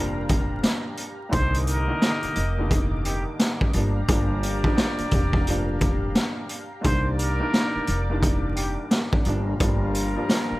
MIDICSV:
0, 0, Header, 1, 8, 480
1, 0, Start_track
1, 0, Key_signature, -3, "minor"
1, 0, Tempo, 689655
1, 923, Time_signature, 4, 2, 24, 8
1, 7375, End_track
2, 0, Start_track
2, 0, Title_t, "Analog synth pad"
2, 0, Program_c, 0, 89
2, 0, Note_on_c, 0, 67, 83
2, 0, Note_on_c, 0, 77, 82
2, 0, Note_on_c, 0, 82, 89
2, 905, Note_off_c, 0, 67, 0
2, 905, Note_off_c, 0, 77, 0
2, 905, Note_off_c, 0, 82, 0
2, 929, Note_on_c, 0, 70, 80
2, 929, Note_on_c, 0, 86, 92
2, 931, Note_on_c, 0, 75, 75
2, 2589, Note_off_c, 0, 70, 0
2, 2589, Note_off_c, 0, 86, 0
2, 2590, Note_off_c, 0, 75, 0
2, 2605, Note_on_c, 0, 77, 79
2, 2605, Note_on_c, 0, 82, 95
2, 2606, Note_on_c, 0, 67, 79
2, 4742, Note_off_c, 0, 82, 0
2, 4743, Note_off_c, 0, 67, 0
2, 4743, Note_off_c, 0, 77, 0
2, 4759, Note_on_c, 0, 70, 80
2, 4759, Note_on_c, 0, 86, 90
2, 4760, Note_on_c, 0, 74, 73
2, 6424, Note_off_c, 0, 70, 0
2, 6424, Note_off_c, 0, 86, 0
2, 6425, Note_off_c, 0, 74, 0
2, 6452, Note_on_c, 0, 67, 82
2, 6452, Note_on_c, 0, 77, 81
2, 6453, Note_on_c, 0, 82, 91
2, 7375, Note_off_c, 0, 67, 0
2, 7375, Note_off_c, 0, 77, 0
2, 7375, Note_off_c, 0, 82, 0
2, 7375, End_track
3, 0, Start_track
3, 0, Title_t, "Muted trumpet"
3, 0, Program_c, 1, 59
3, 914, Note_on_c, 1, 72, 106
3, 1134, Note_off_c, 1, 72, 0
3, 1164, Note_on_c, 1, 70, 85
3, 1856, Note_off_c, 1, 70, 0
3, 2125, Note_on_c, 1, 67, 79
3, 2260, Note_off_c, 1, 67, 0
3, 4757, Note_on_c, 1, 72, 98
3, 4976, Note_off_c, 1, 72, 0
3, 4988, Note_on_c, 1, 70, 83
3, 5688, Note_off_c, 1, 70, 0
3, 5958, Note_on_c, 1, 67, 77
3, 6096, Note_off_c, 1, 67, 0
3, 7375, End_track
4, 0, Start_track
4, 0, Title_t, "Trumpet section"
4, 0, Program_c, 2, 61
4, 0, Note_on_c, 2, 55, 83
4, 0, Note_on_c, 2, 65, 90
4, 0, Note_on_c, 2, 70, 103
4, 656, Note_off_c, 2, 55, 0
4, 657, Note_off_c, 2, 65, 0
4, 657, Note_off_c, 2, 70, 0
4, 923, Note_on_c, 2, 58, 90
4, 923, Note_on_c, 2, 67, 92
4, 923, Note_on_c, 2, 75, 97
4, 2335, Note_off_c, 2, 58, 0
4, 2335, Note_off_c, 2, 67, 0
4, 2335, Note_off_c, 2, 75, 0
4, 2607, Note_on_c, 2, 58, 91
4, 2608, Note_on_c, 2, 67, 93
4, 2608, Note_on_c, 2, 74, 102
4, 4497, Note_off_c, 2, 58, 0
4, 4498, Note_off_c, 2, 67, 0
4, 4498, Note_off_c, 2, 74, 0
4, 4759, Note_on_c, 2, 58, 87
4, 4759, Note_on_c, 2, 67, 86
4, 4759, Note_on_c, 2, 74, 103
4, 6173, Note_off_c, 2, 58, 0
4, 6173, Note_off_c, 2, 67, 0
4, 6173, Note_off_c, 2, 74, 0
4, 6444, Note_on_c, 2, 55, 80
4, 6444, Note_on_c, 2, 65, 92
4, 6444, Note_on_c, 2, 70, 98
4, 7375, Note_off_c, 2, 55, 0
4, 7375, Note_off_c, 2, 65, 0
4, 7375, Note_off_c, 2, 70, 0
4, 7375, End_track
5, 0, Start_track
5, 0, Title_t, "Upright piano"
5, 0, Program_c, 3, 0
5, 0, Note_on_c, 3, 53, 97
5, 0, Note_on_c, 3, 55, 89
5, 0, Note_on_c, 3, 58, 95
5, 0, Note_on_c, 3, 62, 105
5, 752, Note_off_c, 3, 53, 0
5, 755, Note_off_c, 3, 55, 0
5, 758, Note_off_c, 3, 58, 0
5, 761, Note_off_c, 3, 62, 0
5, 899, Note_on_c, 3, 36, 92
5, 904, Note_on_c, 3, 51, 88
5, 908, Note_on_c, 3, 55, 87
5, 912, Note_on_c, 3, 58, 84
5, 917, Note_on_c, 3, 50, 104
5, 1265, Note_off_c, 3, 36, 0
5, 1268, Note_off_c, 3, 51, 0
5, 1270, Note_off_c, 3, 55, 0
5, 1272, Note_off_c, 3, 58, 0
5, 1274, Note_off_c, 3, 50, 0
5, 1306, Note_on_c, 3, 36, 96
5, 1310, Note_on_c, 3, 51, 87
5, 1315, Note_on_c, 3, 55, 86
5, 1319, Note_on_c, 3, 58, 84
5, 1324, Note_on_c, 3, 50, 107
5, 1618, Note_off_c, 3, 36, 0
5, 1620, Note_off_c, 3, 51, 0
5, 1622, Note_off_c, 3, 55, 0
5, 1625, Note_off_c, 3, 58, 0
5, 1627, Note_off_c, 3, 50, 0
5, 1796, Note_on_c, 3, 36, 91
5, 1800, Note_on_c, 3, 51, 86
5, 1805, Note_on_c, 3, 55, 89
5, 1809, Note_on_c, 3, 58, 87
5, 1813, Note_on_c, 3, 50, 104
5, 2602, Note_off_c, 3, 55, 0
5, 2604, Note_off_c, 3, 36, 0
5, 2605, Note_on_c, 3, 53, 92
5, 2606, Note_off_c, 3, 51, 0
5, 2608, Note_off_c, 3, 58, 0
5, 2612, Note_on_c, 3, 55, 80
5, 2613, Note_off_c, 3, 50, 0
5, 2618, Note_on_c, 3, 58, 87
5, 2624, Note_on_c, 3, 62, 102
5, 2769, Note_off_c, 3, 53, 0
5, 2772, Note_off_c, 3, 55, 0
5, 2776, Note_off_c, 3, 58, 0
5, 2778, Note_off_c, 3, 62, 0
5, 2845, Note_on_c, 3, 53, 90
5, 2851, Note_on_c, 3, 55, 87
5, 2857, Note_on_c, 3, 58, 91
5, 2863, Note_on_c, 3, 62, 102
5, 3198, Note_off_c, 3, 53, 0
5, 3201, Note_off_c, 3, 55, 0
5, 3205, Note_off_c, 3, 58, 0
5, 3208, Note_off_c, 3, 62, 0
5, 3233, Note_on_c, 3, 53, 103
5, 3238, Note_on_c, 3, 55, 91
5, 3245, Note_on_c, 3, 58, 79
5, 3251, Note_on_c, 3, 62, 93
5, 3297, Note_off_c, 3, 53, 0
5, 3303, Note_off_c, 3, 55, 0
5, 3308, Note_on_c, 3, 53, 103
5, 3309, Note_off_c, 3, 58, 0
5, 3314, Note_on_c, 3, 55, 85
5, 3315, Note_off_c, 3, 62, 0
5, 3319, Note_on_c, 3, 58, 88
5, 3326, Note_on_c, 3, 62, 108
5, 3767, Note_off_c, 3, 53, 0
5, 3770, Note_off_c, 3, 55, 0
5, 3773, Note_off_c, 3, 58, 0
5, 3776, Note_off_c, 3, 62, 0
5, 3810, Note_on_c, 3, 53, 100
5, 3816, Note_on_c, 3, 55, 87
5, 3822, Note_on_c, 3, 58, 95
5, 3827, Note_on_c, 3, 62, 109
5, 4593, Note_off_c, 3, 53, 0
5, 4596, Note_off_c, 3, 55, 0
5, 4599, Note_off_c, 3, 58, 0
5, 4601, Note_off_c, 3, 62, 0
5, 4741, Note_on_c, 3, 36, 91
5, 4745, Note_on_c, 3, 51, 80
5, 4750, Note_on_c, 3, 55, 86
5, 4755, Note_on_c, 3, 58, 82
5, 4759, Note_on_c, 3, 62, 103
5, 5106, Note_off_c, 3, 36, 0
5, 5109, Note_off_c, 3, 51, 0
5, 5111, Note_off_c, 3, 55, 0
5, 5113, Note_off_c, 3, 58, 0
5, 5115, Note_off_c, 3, 62, 0
5, 5147, Note_on_c, 3, 36, 96
5, 5151, Note_on_c, 3, 51, 87
5, 5156, Note_on_c, 3, 55, 86
5, 5160, Note_on_c, 3, 58, 85
5, 5165, Note_on_c, 3, 62, 107
5, 5458, Note_off_c, 3, 36, 0
5, 5460, Note_off_c, 3, 51, 0
5, 5463, Note_off_c, 3, 55, 0
5, 5465, Note_off_c, 3, 58, 0
5, 5467, Note_off_c, 3, 62, 0
5, 5635, Note_on_c, 3, 36, 91
5, 5639, Note_on_c, 3, 51, 82
5, 5643, Note_on_c, 3, 55, 84
5, 5649, Note_on_c, 3, 58, 87
5, 5652, Note_on_c, 3, 62, 102
5, 6442, Note_off_c, 3, 55, 0
5, 6444, Note_off_c, 3, 36, 0
5, 6446, Note_off_c, 3, 51, 0
5, 6447, Note_on_c, 3, 53, 91
5, 6449, Note_off_c, 3, 58, 0
5, 6453, Note_off_c, 3, 62, 0
5, 6453, Note_on_c, 3, 55, 84
5, 6459, Note_on_c, 3, 58, 83
5, 6464, Note_on_c, 3, 62, 107
5, 6610, Note_off_c, 3, 53, 0
5, 6613, Note_off_c, 3, 55, 0
5, 6616, Note_off_c, 3, 58, 0
5, 6618, Note_off_c, 3, 62, 0
5, 6685, Note_on_c, 3, 53, 93
5, 6691, Note_on_c, 3, 55, 88
5, 6697, Note_on_c, 3, 58, 91
5, 6703, Note_on_c, 3, 62, 103
5, 7038, Note_off_c, 3, 53, 0
5, 7042, Note_off_c, 3, 55, 0
5, 7045, Note_off_c, 3, 58, 0
5, 7048, Note_off_c, 3, 62, 0
5, 7072, Note_on_c, 3, 53, 101
5, 7078, Note_on_c, 3, 55, 85
5, 7084, Note_on_c, 3, 58, 83
5, 7090, Note_on_c, 3, 62, 95
5, 7136, Note_off_c, 3, 53, 0
5, 7142, Note_off_c, 3, 55, 0
5, 7147, Note_on_c, 3, 53, 102
5, 7149, Note_off_c, 3, 58, 0
5, 7153, Note_on_c, 3, 55, 86
5, 7154, Note_off_c, 3, 62, 0
5, 7159, Note_on_c, 3, 58, 88
5, 7165, Note_on_c, 3, 62, 103
5, 7375, Note_off_c, 3, 53, 0
5, 7375, Note_off_c, 3, 55, 0
5, 7375, Note_off_c, 3, 58, 0
5, 7375, Note_off_c, 3, 62, 0
5, 7375, End_track
6, 0, Start_track
6, 0, Title_t, "Upright bass"
6, 0, Program_c, 4, 32
6, 0, Note_on_c, 4, 29, 93
6, 416, Note_off_c, 4, 29, 0
6, 925, Note_on_c, 4, 36, 121
6, 1304, Note_off_c, 4, 36, 0
6, 1646, Note_on_c, 4, 29, 93
6, 2247, Note_off_c, 4, 29, 0
6, 2605, Note_on_c, 4, 31, 102
6, 2794, Note_off_c, 4, 31, 0
6, 2845, Note_on_c, 4, 31, 115
6, 3224, Note_off_c, 4, 31, 0
6, 3564, Note_on_c, 4, 29, 97
6, 4256, Note_off_c, 4, 29, 0
6, 4766, Note_on_c, 4, 36, 116
6, 5144, Note_off_c, 4, 36, 0
6, 5486, Note_on_c, 4, 29, 94
6, 6087, Note_off_c, 4, 29, 0
6, 6446, Note_on_c, 4, 31, 102
6, 6634, Note_off_c, 4, 31, 0
6, 6685, Note_on_c, 4, 31, 111
6, 7064, Note_off_c, 4, 31, 0
6, 7375, End_track
7, 0, Start_track
7, 0, Title_t, "Muted upright bass strokes"
7, 1556, Note_on_c, 9, 29, 49
7, 1625, Note_off_c, 9, 29, 0
7, 3476, Note_on_c, 9, 29, 50
7, 3546, Note_off_c, 9, 29, 0
7, 5398, Note_on_c, 9, 29, 50
7, 5467, Note_off_c, 9, 29, 0
7, 7316, Note_on_c, 9, 29, 50
7, 7375, Note_off_c, 9, 29, 0
7, 7375, End_track
8, 0, Start_track
8, 0, Title_t, "Drums"
8, 202, Note_on_c, 9, 42, 73
8, 205, Note_on_c, 9, 36, 89
8, 271, Note_off_c, 9, 42, 0
8, 275, Note_off_c, 9, 36, 0
8, 441, Note_on_c, 9, 38, 126
8, 441, Note_on_c, 9, 42, 95
8, 511, Note_off_c, 9, 38, 0
8, 511, Note_off_c, 9, 42, 0
8, 677, Note_on_c, 9, 42, 73
8, 747, Note_off_c, 9, 42, 0
8, 922, Note_on_c, 9, 42, 95
8, 924, Note_on_c, 9, 36, 124
8, 991, Note_off_c, 9, 42, 0
8, 993, Note_off_c, 9, 36, 0
8, 1074, Note_on_c, 9, 42, 62
8, 1144, Note_off_c, 9, 42, 0
8, 1162, Note_on_c, 9, 42, 66
8, 1232, Note_off_c, 9, 42, 0
8, 1404, Note_on_c, 9, 38, 116
8, 1407, Note_on_c, 9, 42, 82
8, 1474, Note_off_c, 9, 38, 0
8, 1477, Note_off_c, 9, 42, 0
8, 1550, Note_on_c, 9, 42, 52
8, 1619, Note_off_c, 9, 42, 0
8, 1639, Note_on_c, 9, 42, 73
8, 1709, Note_off_c, 9, 42, 0
8, 1885, Note_on_c, 9, 36, 100
8, 1887, Note_on_c, 9, 42, 92
8, 1955, Note_off_c, 9, 36, 0
8, 1957, Note_off_c, 9, 42, 0
8, 2122, Note_on_c, 9, 42, 72
8, 2192, Note_off_c, 9, 42, 0
8, 2363, Note_on_c, 9, 38, 121
8, 2363, Note_on_c, 9, 42, 100
8, 2432, Note_off_c, 9, 38, 0
8, 2432, Note_off_c, 9, 42, 0
8, 2513, Note_on_c, 9, 36, 94
8, 2583, Note_off_c, 9, 36, 0
8, 2597, Note_on_c, 9, 42, 72
8, 2667, Note_off_c, 9, 42, 0
8, 2841, Note_on_c, 9, 42, 96
8, 2844, Note_on_c, 9, 36, 122
8, 2911, Note_off_c, 9, 42, 0
8, 2914, Note_off_c, 9, 36, 0
8, 3083, Note_on_c, 9, 42, 67
8, 3153, Note_off_c, 9, 42, 0
8, 3230, Note_on_c, 9, 36, 90
8, 3300, Note_off_c, 9, 36, 0
8, 3324, Note_on_c, 9, 38, 117
8, 3327, Note_on_c, 9, 42, 82
8, 3393, Note_off_c, 9, 38, 0
8, 3396, Note_off_c, 9, 42, 0
8, 3469, Note_on_c, 9, 42, 52
8, 3539, Note_off_c, 9, 42, 0
8, 3558, Note_on_c, 9, 42, 77
8, 3563, Note_on_c, 9, 36, 94
8, 3627, Note_off_c, 9, 42, 0
8, 3633, Note_off_c, 9, 36, 0
8, 3712, Note_on_c, 9, 36, 87
8, 3781, Note_off_c, 9, 36, 0
8, 3806, Note_on_c, 9, 42, 91
8, 3876, Note_off_c, 9, 42, 0
8, 4041, Note_on_c, 9, 42, 69
8, 4046, Note_on_c, 9, 36, 90
8, 4111, Note_off_c, 9, 42, 0
8, 4115, Note_off_c, 9, 36, 0
8, 4282, Note_on_c, 9, 38, 121
8, 4282, Note_on_c, 9, 42, 95
8, 4352, Note_off_c, 9, 38, 0
8, 4352, Note_off_c, 9, 42, 0
8, 4518, Note_on_c, 9, 42, 73
8, 4588, Note_off_c, 9, 42, 0
8, 4762, Note_on_c, 9, 42, 96
8, 4765, Note_on_c, 9, 36, 121
8, 4832, Note_off_c, 9, 42, 0
8, 4834, Note_off_c, 9, 36, 0
8, 5003, Note_on_c, 9, 42, 69
8, 5073, Note_off_c, 9, 42, 0
8, 5245, Note_on_c, 9, 38, 115
8, 5248, Note_on_c, 9, 42, 83
8, 5315, Note_off_c, 9, 38, 0
8, 5318, Note_off_c, 9, 42, 0
8, 5479, Note_on_c, 9, 42, 74
8, 5548, Note_off_c, 9, 42, 0
8, 5725, Note_on_c, 9, 36, 99
8, 5727, Note_on_c, 9, 42, 92
8, 5795, Note_off_c, 9, 36, 0
8, 5797, Note_off_c, 9, 42, 0
8, 5961, Note_on_c, 9, 42, 70
8, 6031, Note_off_c, 9, 42, 0
8, 6201, Note_on_c, 9, 38, 117
8, 6201, Note_on_c, 9, 42, 98
8, 6271, Note_off_c, 9, 38, 0
8, 6271, Note_off_c, 9, 42, 0
8, 6352, Note_on_c, 9, 36, 97
8, 6422, Note_off_c, 9, 36, 0
8, 6437, Note_on_c, 9, 42, 71
8, 6506, Note_off_c, 9, 42, 0
8, 6681, Note_on_c, 9, 42, 96
8, 6684, Note_on_c, 9, 36, 120
8, 6751, Note_off_c, 9, 42, 0
8, 6753, Note_off_c, 9, 36, 0
8, 6922, Note_on_c, 9, 42, 70
8, 6992, Note_off_c, 9, 42, 0
8, 7164, Note_on_c, 9, 38, 113
8, 7167, Note_on_c, 9, 42, 83
8, 7233, Note_off_c, 9, 38, 0
8, 7236, Note_off_c, 9, 42, 0
8, 7375, End_track
0, 0, End_of_file